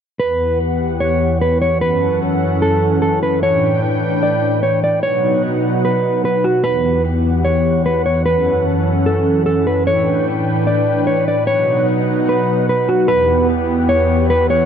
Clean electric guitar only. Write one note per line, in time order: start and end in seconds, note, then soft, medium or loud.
0.20 0.58 B4 loud
1.00 1.38 C#5 medium
1.42 1.60 B4 medium
1.62 1.81 C#5 medium
1.81 2.19 B4 medium
2.62 3.00 A4 medium
3.02 3.21 A4 medium
3.23 3.42 B4 medium
3.43 3.81 C#5 loud
4.23 4.61 D5 medium
4.63 4.82 C#5 medium
4.84 5.03 D5 medium
5.03 5.41 C#5 loud
5.85 6.22 B4 medium
6.25 6.44 B4 medium
6.44 6.63 F#4 medium
6.64 7.02 B4 loud
7.45 7.83 C#5 medium
7.86 8.05 B4 medium
8.06 8.25 C#5 medium
8.26 8.63 B4 medium
9.06 9.44 A4 medium
9.46 9.65 A4 medium
9.67 9.86 B4 medium
9.87 10.25 C#5 loud
10.67 11.05 D5 medium
11.07 11.26 C#5 medium
11.28 11.47 D5 medium
11.47 11.85 C#5 loud
12.29 12.67 B4 medium
12.69 12.88 B4 medium
12.89 13.08 F#4 medium
13.08 13.46 B4 loud
13.89 14.27 C#5 medium
14.30 14.49 B4 medium
14.50 14.65 C#5 medium